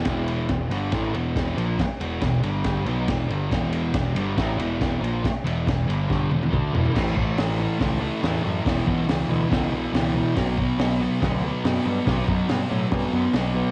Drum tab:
CC |----------------|----------------|----------------|----------------|
RD |x-x-x-x-x-x-x-x-|x-x-x-x-x-x-x-x-|x-x-x-x-x-x-x-x-|x-x-x-x---------|
HH |----------------|----------------|----------------|----------------|
SD |o---o---o---o---|o---o---o---o---|o---o---o---o---|o---o---o-------|
T1 |----------------|----------------|----------------|----------oo----|
T2 |----------------|----------------|----------------|------------o---|
FT |----------------|----------------|----------------|--------------oo|
BD |o---o---o---o---|o---o---o---o---|o---o---o---o---|o---o---o---o---|

CC |x---------------|----------------|----------------|----------------|
RD |----------------|----------------|----------------|----------------|
HH |----o---o---o---|o---o---o---o---|o---o---o---o---|o---o---o---o---|
SD |o---o---o---o---|o---o---o---o---|o---o---o---o---|o---o---o---o---|
T1 |----------------|----------------|----------------|----------------|
T2 |----------------|----------------|----------------|----------------|
FT |----------------|----------------|----------------|----------------|
BD |o-o-----o-------|o-o-----o-------|o-o-----o-------|o-o-----o-------|